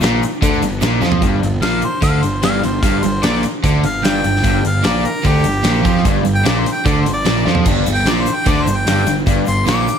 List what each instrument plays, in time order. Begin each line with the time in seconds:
0.01 picked electric bass A#1, overdriven electric guitar A#2, snare, closed hi-hat, shaker
0.22 muted overdriven electric guitar stroke, muted picked electric bass stroke, closed hi-hat, shaker
0.33 shaker
0.42 picked electric bass D2, overdriven electric guitar D3, kick, closed hi-hat, shaker
0.54 shaker
0.62 picked electric bass G1, overdriven electric guitar G2, closed hi-hat, shaker
0.72 shaker
0.81 picked electric bass A#1, overdriven electric guitar A#2, snare, closed hi-hat, shaker
1.01 picked electric bass F2, overdriven electric guitar F3, snare, shaker
1.11 floor tom, shaker
1.22 picked electric bass G1, overdriven electric guitar G2, kick, closed hi-hat
1.43 picked electric bass G1, overdriven electric guitar G2, closed hi-hat
1.62 picked electric bass A#1, overdriven electric guitar A#2, harmonica F5, snare, closed hi-hat
1.82 harmonica C5, muted picked electric bass stroke, muted overdriven electric guitar stroke, closed hi-hat
2.02 picked electric bass D2, overdriven electric guitar D3, harmonica F5, kick, closed hi-hat
2.23 picked electric bass G1, overdriven electric guitar G2, harmonica C5, closed hi-hat
2.43 picked electric bass G1, overdriven electric guitar G2, harmonica F5, snare, closed hi-hat
2.63 picked electric bass G1, overdriven electric guitar G2, harmonica C5, closed hi-hat
2.83 picked electric bass G1, overdriven electric guitar G2, harmonica F5, kick, closed hi-hat
3.03 picked electric bass G1, overdriven electric guitar G2, harmonica C5, closed hi-hat
3.23 picked electric bass A#1, overdriven electric guitar A#2, harmonica D5, snare, closed hi-hat
3.43 muted overdriven electric guitar stroke, muted picked electric bass stroke, closed hi-hat
3.64 picked electric bass D2, overdriven electric guitar D3, kick, closed hi-hat
3.84 picked electric bass G1, overdriven electric guitar G2, harmonica F5, closed hi-hat
4.05 picked electric bass G1, overdriven electric guitar G2, harmonica G5, snare, closed hi-hat
4.24 picked electric bass G1, overdriven electric guitar G2, closed hi-hat
4.36 snare
4.44 picked electric bass G1, overdriven electric guitar G2, kick, closed hi-hat
4.64 picked electric bass G1, overdriven electric guitar G2, harmonica F5, closed hi-hat
4.84 picked electric bass A#1, overdriven electric guitar A#2, harmonica D5, snare, closed hi-hat
5.05 harmonica A#4, muted picked electric bass stroke, muted overdriven electric guitar stroke, closed hi-hat
5.25 picked electric bass D2, overdriven electric guitar D3, harmonica G4, kick, closed hi-hat
5.44 picked electric bass G1, overdriven electric guitar G2, closed hi-hat
5.64 picked electric bass A#1, overdriven electric guitar A#2, snare, closed hi-hat
5.85 picked electric bass F2, overdriven electric guitar F3, kick, closed hi-hat
5.96 snare
6.05 picked electric bass G1, overdriven electric guitar G2, kick, closed hi-hat
6.25 picked electric bass G1, overdriven electric guitar G2, closed hi-hat
6.35 harmonica G5
6.45 picked electric bass A#1, overdriven electric guitar A#2, harmonica D5, snare, closed hi-hat
6.59 harmonica C5
6.66 muted picked electric bass stroke, muted overdriven electric guitar stroke, closed hi-hat
6.72 harmonica G5
6.86 picked electric bass D2, overdriven electric guitar D3, harmonica D5, kick, closed hi-hat
7.01 harmonica C5
7.06 picked electric bass G1, overdriven electric guitar G2, closed hi-hat
7.13 harmonica D5
7.26 picked electric bass A#1, overdriven electric guitar A#2, snare, closed hi-hat
7.46 picked electric bass F2, overdriven electric guitar F3, snare
7.55 floor tom
7.66 picked electric bass G1, overdriven electric guitar G2, kick, closed hi-hat, crash, shaker
7.86 picked electric bass G1, overdriven electric guitar G2, closed hi-hat, shaker
7.94 harmonica G5
8.05 picked electric bass A#1, overdriven electric guitar A#2, snare, closed hi-hat, shaker
8.10 harmonica D5
8.22 harmonica C5, muted picked electric bass stroke
8.26 muted overdriven electric guitar stroke, closed hi-hat, shaker
8.35 harmonica G5
8.46 picked electric bass D2, overdriven electric guitar D3, harmonica D5, kick, closed hi-hat, shaker
8.62 harmonica C5
8.67 picked electric bass G1, overdriven electric guitar G2, closed hi-hat, shaker
8.76 harmonica G5
8.87 picked electric bass G1, overdriven electric guitar G2, snare, closed hi-hat, shaker
9.06 picked electric bass G1, overdriven electric guitar G2, closed hi-hat, shaker
9.18 shaker
9.26 picked electric bass G1, overdriven electric guitar G2, kick, closed hi-hat, shaker
9.46 picked electric bass G1, overdriven electric guitar G2, harmonica C6, closed hi-hat, shaker
9.66 picked electric bass A#1, overdriven electric guitar A#2, harmonica D6, snare, closed hi-hat, shaker
9.88 muted overdriven electric guitar stroke, muted picked electric bass stroke, closed hi-hat, shaker